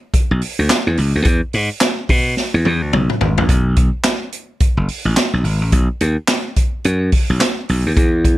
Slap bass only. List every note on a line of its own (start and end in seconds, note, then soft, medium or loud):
0.31 0.41 B1 loud
0.59 0.68 D2 medium
0.87 0.96 E2 medium
0.98 1.13 C#2 medium
1.15 1.25 D2 medium
1.25 1.40 E2 loud
1.54 1.69 G#2 medium
2.09 2.34 B2 loud
2.54 2.64 E2 medium
2.66 2.82 E2 loud
2.82 2.92 D2 medium
2.93 3.08 B1 medium
3.21 3.36 G#1 medium
3.38 3.48 A1 medium
3.49 3.89 B1 loud
4.77 4.87 F#1 loud
5.05 5.15 A1 medium
5.33 5.43 B1 medium
5.44 5.62 G#1 medium
5.62 5.72 A1 medium
5.72 5.88 B1 loud
6.01 6.16 D#2 loud
6.85 7.10 F#2 loud
7.30 7.40 B1 loud
7.69 7.84 B1 medium
7.86 7.96 D#2 medium
7.97 8.36 E2 loud